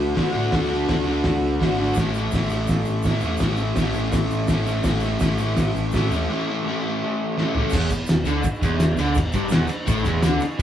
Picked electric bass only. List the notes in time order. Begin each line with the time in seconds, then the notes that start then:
0.00 D2
0.17 D3
0.35 A2
0.53 D2
0.88 D2
1.06 D2
1.25 D2
1.43 D2
1.61 G#1
1.97 A1
2.33 A1
2.50 A1
2.69 A1
2.86 A1
3.04 A2
3.23 E2
3.40 A1
3.76 A1
3.94 A1
4.12 A1
4.31 A1
4.49 A1
4.84 A1
5.21 A1
5.38 A1
5.58 A1
5.75 A1
5.94 A2
6.10 D#2
7.73 E1
7.91 E1
8.08 E1
8.24 D2
8.44 muted picked electric bass stroke
8.61 E1
8.96 D2
9.17 E1
9.34 G1
9.52 E1
9.70 muted picked electric bass stroke
9.88 A1
10.06 E1
10.22 D2
10.41 muted picked electric bass stroke